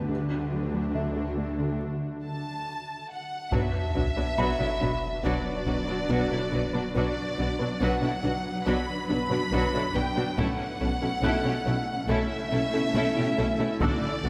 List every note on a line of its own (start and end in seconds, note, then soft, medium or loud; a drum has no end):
0.09 1.78 D2 soft
0.09 0.22 D3 medium
0.31 0.44 D4 soft
0.52 0.65 F#3 soft
0.74 0.87 F#3 medium
0.95 1.08 D3 medium
0.95 1.77 E5 soft
1.16 1.29 A3 soft
1.38 1.51 A3 medium
1.59 1.72 D3 medium
2.23 3.05 A5 medium
3.11 3.53 F#5 medium
3.52 3.61 B1 medium
3.52 3.61 B2 medium
3.52 3.72 F#3 soft
3.52 6.92 F#3 medium
3.52 3.65 B3 medium
3.52 3.72 D4 soft
3.52 6.92 D4 medium
3.52 3.72 F#4 soft
3.52 6.92 F#4 medium
3.52 3.72 B4 soft
3.52 6.92 B4 medium
3.52 5.24 E5 medium
3.52 6.05 A5 soft
3.52 taiko medium
3.52 sub drop medium
3.95 4.04 B1 soft
3.95 4.03 B2 soft
3.95 4.03 F#3 soft
3.95 4.08 D4 soft
3.95 4.04 D4 soft
3.95 4.03 F#4 soft
3.95 4.03 B4 soft
4.16 4.25 B2 soft
4.16 4.25 F#3 soft
4.16 4.24 D4 soft
4.16 4.25 D4 soft
4.16 4.24 F#4 soft
4.16 4.30 B4 medium
4.37 4.46 B1 medium
4.37 4.47 B2 medium
4.37 4.59 F#3 soft
4.37 4.51 B3 medium
4.37 4.58 D4 soft
4.37 4.58 F#4 medium
4.37 4.58 B4 soft
4.37 6.91 B5 soft
4.59 4.68 B2 soft
4.59 4.68 F#3 soft
4.59 4.72 D4 medium
4.59 4.68 D4 soft
4.59 4.68 E4 soft
4.59 4.67 A4 soft
4.80 4.89 B1 soft
4.80 4.90 B2 soft
4.80 4.89 F#3 soft
4.80 4.94 D4 soft
4.80 4.90 D4 soft
4.80 4.88 F#4 soft
4.80 4.88 B4 soft
4.80 taiko soft
5.23 5.33 B1 medium
5.23 5.33 B2 soft
5.23 5.44 F#3 soft
5.23 5.36 B3 medium
5.23 5.44 D4 soft
5.23 5.44 F#4 soft
5.23 5.44 B4 medium
5.23 6.94 D5 medium
5.66 5.75 B1 soft
5.66 5.75 B2 soft
5.66 5.75 F#3 soft
5.66 5.79 D4 medium
5.66 5.75 D4 soft
5.66 5.75 F#4 soft
5.66 5.75 B4 soft
5.88 5.97 B2 soft
5.88 5.96 F#3 soft
5.88 5.96 D4 soft
5.88 5.96 F#4 soft
5.88 6.01 B4 soft
6.09 6.18 B1 medium
6.09 6.18 B2 soft
6.09 6.30 F#3 medium
6.09 6.23 B3 medium
6.09 6.29 D4 soft
6.09 6.30 F#4 medium
6.09 6.30 B4 soft
6.31 6.39 B2 soft
6.31 6.39 F#3 soft
6.31 6.39 D4 soft
6.31 6.39 E4 soft
6.31 6.44 F#4 medium
6.31 6.40 A4 soft
6.52 6.61 B1 soft
6.52 6.60 B2 soft
6.52 6.61 F#3 soft
6.52 6.61 D4 soft
6.52 6.61 F#4 soft
6.52 6.65 B4 soft
6.52 6.61 B4 soft
6.73 6.82 B2 soft
6.73 6.82 F#3 soft
6.73 6.82 D4 soft
6.73 6.83 D4 soft
6.73 6.83 F#4 soft
6.73 6.86 B4 medium
6.95 7.04 B1 medium
6.95 7.04 B2 medium
6.95 7.16 F#3 soft
6.95 10.35 F#3 medium
6.95 7.08 B3 medium
6.95 7.15 D4 medium
6.95 10.35 D4 medium
6.95 7.16 F#4 soft
6.95 7.15 B4 medium
6.95 10.35 B4 medium
6.95 7.79 D5 medium
7.38 7.47 B1 soft
7.38 7.46 B2 soft
7.38 7.47 F#3 soft
7.38 7.51 D4 soft
7.38 7.46 D4 soft
7.38 7.48 F#4 soft
7.38 7.48 B4 soft
7.59 7.68 B2 soft
7.59 7.68 F#3 soft
7.59 7.68 D4 soft
7.59 7.68 F#4 soft
7.59 7.72 B4 medium
7.80 7.89 B1 medium
7.80 7.89 B2 medium
7.80 8.01 F#3 medium
7.80 7.93 B3 medium
7.80 8.01 D4 medium
7.80 8.01 F#4 medium
7.80 8.01 B4 medium
7.80 8.67 F#5 medium
8.02 8.11 B2 soft
8.02 8.10 F#3 soft
8.02 8.15 D4 medium
8.02 8.10 D4 soft
8.02 8.11 E4 soft
8.02 8.11 A4 soft
8.23 8.32 B1 soft
8.23 8.32 B2 soft
8.23 8.32 F#3 soft
8.23 8.36 D4 medium
8.23 8.32 D4 soft
8.23 8.32 F#4 soft
8.23 8.32 B4 soft
8.66 8.74 B1 medium
8.66 8.75 B2 medium
8.66 8.87 F#3 medium
8.66 8.79 B3 medium
8.66 8.86 D4 medium
8.66 8.87 F#4 medium
8.66 8.87 B4 medium
8.66 9.07 B5 medium
9.09 9.18 B1 soft
9.09 9.18 B2 soft
9.09 9.17 F#3 soft
9.09 9.17 D4 soft
9.09 9.22 D4 medium
9.09 9.18 F#4 soft
9.09 9.18 B4 soft
9.09 9.93 B5 medium
9.30 9.39 B2 soft
9.30 9.38 F#3 soft
9.30 9.38 D4 soft
9.30 9.39 D4 soft
9.30 9.39 F#4 soft
9.30 9.44 B4 medium
9.52 9.61 B1 medium
9.52 9.60 B2 medium
9.52 9.72 F#3 medium
9.52 9.65 B3 medium
9.52 9.72 D4 soft
9.52 9.73 F#4 medium
9.52 9.73 B4 medium
9.73 9.82 B2 soft
9.73 9.82 F#3 soft
9.73 9.82 D4 soft
9.73 9.81 E4 soft
9.73 9.87 F#4 medium
9.73 9.82 A4 soft
9.95 10.03 B1 soft
9.95 10.03 B2 soft
9.95 10.04 F#3 soft
9.95 10.04 D4 soft
9.95 10.03 F#4 soft
9.95 10.03 B4 soft
9.95 10.08 B4 soft
9.95 10.38 G5 medium
10.16 10.25 B2 soft
10.16 10.24 F#3 soft
10.16 10.24 D4 soft
10.16 10.24 F#4 soft
10.16 10.29 B4 soft
10.37 10.46 B1 medium
10.37 10.46 B2 medium
10.37 10.58 A3 medium
10.37 10.51 A3 medium
10.37 13.82 A3 medium
10.37 10.58 C#4 medium
10.37 13.82 C#4 medium
10.37 10.58 E4 medium
10.37 13.82 E4 medium
10.37 10.58 A4 soft
10.37 13.81 A4 medium
10.37 12.09 F#5 medium
10.37 taiko medium
10.80 10.89 B1 soft
10.80 10.89 B2 soft
10.80 10.88 A3 soft
10.80 10.89 C#4 soft
10.80 10.94 C#4 soft
10.80 10.88 E4 soft
10.80 10.88 A4 soft
11.01 11.10 B2 soft
11.01 11.09 A3 soft
11.01 11.10 C#4 soft
11.01 11.10 E4 soft
11.01 11.15 A4 medium
11.22 11.32 B1 medium
11.22 11.32 B2 medium
11.22 11.43 A3 medium
11.22 11.37 A3 medium
11.22 11.43 C#4 medium
11.22 11.44 E4 medium
11.22 11.44 A4 medium
11.22 13.77 F#6 soft
11.44 11.54 B2 soft
11.44 11.52 A3 soft
11.44 11.52 C#4 soft
11.44 11.58 C#4 soft
11.44 11.53 D4 soft
11.44 11.54 G4 soft
11.66 11.75 B1 soft
11.66 11.75 B2 soft
11.66 11.74 A3 soft
11.66 11.74 C#4 soft
11.66 11.79 C#4 medium
11.66 11.75 E4 soft
11.66 11.75 A4 soft
12.09 12.17 B1 medium
12.09 12.18 B2 medium
12.09 12.29 A3 medium
12.09 12.22 A3 medium
12.09 12.29 C#4 medium
12.09 12.30 E4 medium
12.09 12.29 A4 medium
12.09 13.81 E5 medium
12.52 12.60 B1 soft
12.52 12.61 B2 soft
12.52 12.60 A3 soft
12.52 12.65 C#4 medium
12.52 12.60 C#4 soft
12.52 12.60 E4 soft
12.52 12.60 A4 medium
12.73 12.82 B2 soft
12.73 12.81 A3 soft
12.73 12.81 C#4 soft
12.73 12.81 E4 soft
12.73 12.87 A4 medium
12.95 13.03 B1 medium
12.95 13.04 B2 medium
12.95 13.15 A3 medium
12.95 13.08 A3 medium
12.95 13.15 C#4 medium
12.95 13.15 E4 medium
12.95 13.15 A4 medium
13.16 13.25 B2 medium
13.16 13.25 A3 soft
13.16 13.25 C#4 soft
13.16 13.24 D4 soft
13.16 13.29 E4 medium
13.16 13.24 G4 medium
13.38 13.46 B1 soft
13.38 13.46 B2 soft
13.38 13.46 A3 medium
13.38 13.46 C#4 medium
13.38 13.46 E4 medium
13.38 13.51 A4 soft
13.38 13.46 A4 medium
13.59 13.68 B2 soft
13.59 13.68 A3 soft
13.59 13.67 C#4 soft
13.59 13.68 C#4 medium
13.59 13.68 E4 soft
13.59 13.72 A4 medium
13.81 13.89 B1 medium
13.81 13.89 B2 medium
13.81 13.94 D3 medium
13.81 14.01 A3 medium
13.81 14.01 D4 medium
13.81 14.01 F#4 medium
13.81 14.01 A4 soft
13.81 14.29 D5 medium
13.81 14.29 E6 medium
13.81 taiko medium
14.23 14.29 B1 soft
14.23 14.29 B2 soft
14.23 14.29 F#3 medium
14.23 14.29 A3 soft
14.23 14.29 D4 soft
14.23 14.29 F#4 soft
14.23 14.29 A4 soft